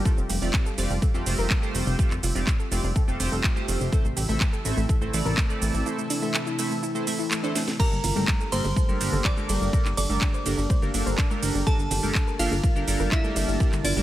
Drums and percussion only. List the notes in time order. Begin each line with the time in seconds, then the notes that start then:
0.05 kick, shaker
0.18 shaker
0.29 open hi-hat, shaker
0.42 shaker
0.53 kick, clap, shaker
0.66 shaker
0.78 open hi-hat, shaker
0.90 shaker
1.02 kick, shaker
1.15 shaker
1.26 open hi-hat, shaker
1.39 shaker
1.50 kick, clap, shaker
1.63 shaker
1.75 open hi-hat, shaker
1.87 shaker
1.99 kick, shaker
2.11 clap, shaker
2.23 open hi-hat, shaker
2.36 shaker
2.47 kick, clap, shaker
2.60 shaker
2.72 open hi-hat, shaker
2.84 shaker
2.96 kick, shaker
3.08 shaker
3.20 open hi-hat, shaker
3.32 shaker
3.44 kick, clap, shaker
3.57 shaker
3.68 open hi-hat, shaker
3.81 shaker
3.92 kick, shaker
4.05 shaker
4.17 open hi-hat, shaker
4.29 shaker
4.41 kick, clap, shaker
4.53 shaker
4.65 open hi-hat, shaker
4.78 shaker
4.89 kick, shaker
5.02 shaker
5.13 open hi-hat, shaker
5.26 shaker
5.37 kick, clap, shaker
5.50 shaker
5.62 open hi-hat, shaker
5.74 shaker
5.86 shaker
5.99 shaker
6.10 open hi-hat, shaker
6.23 shaker
6.34 clap, shaker
6.47 shaker
6.59 open hi-hat, shaker
6.71 shaker
6.83 shaker
6.95 shaker
7.07 open hi-hat, shaker
7.20 shaker
7.31 clap, shaker
7.44 shaker
7.55 snare, open hi-hat, shaker
7.68 snare, shaker
7.80 kick, crash, shaker
7.92 shaker
8.04 open hi-hat, ride, low conga, shaker
8.16 high conga, shaker
8.28 kick, clap, shaker
8.41 shaker
8.52 open hi-hat, ride, shaker
8.64 high bongo, shaker
8.76 kick, high conga, shaker
8.89 shaker
9.01 open hi-hat, ride, shaker
9.12 low conga, shaker
9.25 kick, clap, shaker
9.37 high conga, shaker
9.49 open hi-hat, ride, high bongo, shaker
9.62 shaker
9.73 kick, shaker
9.85 clap, shaker
9.97 open hi-hat, ride, low conga, shaker
10.09 high conga, shaker
10.21 kick, clap, shaker
10.34 shaker
10.46 open hi-hat, ride, shaker
10.57 high bongo, shaker
10.70 kick, high conga, shaker
10.82 shaker
10.94 open hi-hat, ride, shaker
11.07 shaker
11.18 kick, clap, shaker
11.31 high conga, shaker
11.43 open hi-hat, ride, shaker
11.55 high bongo, shaker
11.67 kick, shaker
11.79 shaker
11.91 open hi-hat, ride, low conga, shaker
12.03 high conga, shaker
12.15 kick, clap, shaker
12.28 shaker
12.39 open hi-hat, ride, shaker
12.52 high bongo, shaker
12.63 kick, high conga, shaker
12.76 shaker
12.88 open hi-hat, ride, shaker
13.00 low conga, shaker
13.12 kick, clap, shaker
13.24 high conga, shaker
13.36 open hi-hat, ride, high bongo, shaker
13.49 shaker
13.60 kick, shaker
13.72 clap, shaker
13.83 open hi-hat, ride, low conga, shaker
13.96 high conga, shaker